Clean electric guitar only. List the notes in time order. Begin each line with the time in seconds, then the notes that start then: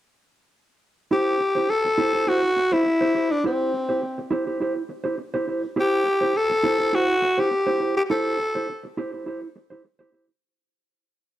1.11 E4 G4 C5
1.40 muted clean electric guitar stroke
1.55 E4 G4 C5
1.69 muted clean electric guitar stroke
1.85 muted clean electric guitar stroke
1.98 E4 G4 C5
2.14 E4 G4 C5
2.27 E4 G4 C5
2.43 muted clean electric guitar stroke
2.56 muted clean electric guitar stroke
2.72 E4 G4 C5
2.86 muted clean electric guitar stroke
3.01 E4 G4 C5
3.15 E4 G4 C5
3.31 muted clean electric guitar stroke
3.44 E4 G4 C5
3.74 muted clean electric guitar stroke
3.89 E4 G4 C5
4.02 muted clean electric guitar stroke
4.18 muted clean electric guitar stroke
4.31 E4 G4 C5
4.47 E4 G4 C5
4.60 E4 G4 C5
4.76 muted clean electric guitar stroke
4.89 muted clean electric guitar stroke
5.04 E4 G4 C5
5.18 muted clean electric guitar stroke
5.34 E4 G4 C5
5.48 E4 G4 C5
5.63 muted clean electric guitar stroke
5.76 E4 G4 C5
6.06 muted clean electric guitar stroke
6.21 E4 G4 C5
6.35 muted clean electric guitar stroke
6.50 muted clean electric guitar stroke
6.63 E4 G4 C5
6.80 E4 G4
6.93 E4 G4 C5
7.08 muted clean electric guitar stroke
7.22 muted clean electric guitar stroke
7.38 E4 G4 C5
7.51 muted clean electric guitar stroke
7.67 E4 G4 C5
7.80 E4 G4 C5
7.96 muted clean electric guitar stroke
8.10 E4 G4 C5
8.39 muted clean electric guitar stroke
8.55 E4 G4 C5
8.69 muted clean electric guitar stroke
8.83 muted clean electric guitar stroke
8.97 E4 G4 C5
9.12 E4 G4 C5
9.26 E4 G4 C5
9.42 muted clean electric guitar stroke
9.56 muted clean electric guitar stroke
9.70 E4 G4 C5
9.85 muted clean electric guitar stroke
9.99 E4 G4 C5
10.12 E4 G4 C5
10.28 muted clean electric guitar stroke